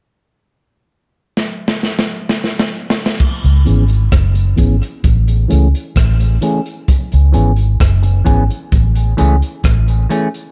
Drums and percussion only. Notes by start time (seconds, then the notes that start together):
1.37 snare
1.68 snare
1.83 snare
1.99 snare
2.29 snare
2.44 snare
2.59 snare
2.90 snare
3.06 snare
3.20 kick, crash
3.44 closed hi-hat
3.66 closed hi-hat
3.88 closed hi-hat
4.12 kick, cross-stick, closed hi-hat
4.35 closed hi-hat
4.58 kick, closed hi-hat
4.83 closed hi-hat
5.04 kick, closed hi-hat
5.28 closed hi-hat
5.50 closed hi-hat
5.75 closed hi-hat
5.96 kick, cross-stick, closed hi-hat
6.20 closed hi-hat
6.42 closed hi-hat
6.66 closed hi-hat
6.88 kick, closed hi-hat
7.12 closed hi-hat
7.34 closed hi-hat
7.56 closed hi-hat
7.80 kick, cross-stick, closed hi-hat
8.03 closed hi-hat
8.26 kick, closed hi-hat
8.50 closed hi-hat
8.72 kick, closed hi-hat
8.96 closed hi-hat
9.18 closed hi-hat
9.42 closed hi-hat
9.64 kick, cross-stick, closed hi-hat
9.88 closed hi-hat
10.10 closed hi-hat
10.34 closed hi-hat